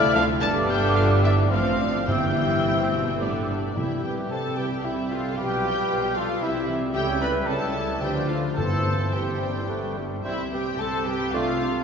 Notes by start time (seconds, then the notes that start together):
Already playing: D2 E4 D5 F6
0.14 F3 A3 D4 F4 F5
0.41 G1 G2 D3 G3 B3 D4 A4 B4 A5 D6
0.69 G4 G5
0.95 F4 F5
1.23 E4 E5
1.50 A1 A2 F3 C4 F4 C5 F5 F6
1.79 D4
2.07 G1 G2 E3 G3 C4 E4 G4 C5 G5 E6
2.64 C3
2.92 B2
3.20 A2 D3 G3 B3 D4 G4 D5 D6
3.49 G2
3.76 C2 C3 E3 G3 E4 G4 E5 G5
3.91 G3 G4
4.03 E3 E4 G4 B4 G5
4.18 G3 G4
4.30 C2 C3 E3 E4 A4 C5 A5
4.44 G3 G4
4.57 E3 E4 G4 B4 G5
4.71 G3 G4
4.84 C2 C3 E3 E4 G4 E5
4.98 G3 G4
5.10 E3 E4 F4 A4 F5
5.24 G3 G4
5.36 B1 B2 F3 F4 G4 B4 F5 G5
5.51 G3 G4
5.64 F3 F4
5.77 G3 G4
5.89 B1 B2 F3 F4
6.04 G3 G4
6.15 F3 F4 A4 F5
6.30 G3 G4
6.41 C2 C3 E3 E4 G4 E5
6.56 G3 G4
6.69 E3 E4
6.82 G3 G4
6.93 C#2 C#3 G3 A3 E4 G4 C#5 G5
7.09 G3 C#4
7.20 A3 E4 B4 D5 B5
7.35 G3 C#4
7.47 C#2 C#3 A3 E4 A4 C#5 A5
7.62 G3 C#4
7.75 A3 E4
7.89 G3 C#4
8.01 D2 D3 F3 A3 D4 G4 B4 D5 G5
8.16 F3 F4
8.28 A3 D4 F4 A4 F5
8.44 F3 F4
8.56 G1 G2 E3 G3 C4 A4 C5 A5
8.72 E3 E4
8.87 G3 C4
9.01 E3 E4
9.12 G1 G2 E3 G3 C4 G4 C5 G5
9.28 E3 E4
9.42 G3 C4
9.56 E3 E4
9.69 G1 G2 D3 G3 A3 B3 B4
9.84 G3 D4
9.97 D3 G3 B3
10.13 G3 D4
10.24 C2 C3 G3 C4 E4 G4 C5 E5
10.52 G3 C4 G4 B4 G5
10.79 C2 C3 G3 C4 A4 C5 A5
11.06 G3 C4 G4 B4 G5
11.33 C2 C3 A3 D4 F4 A4 D5 F5
11.60 A3 D4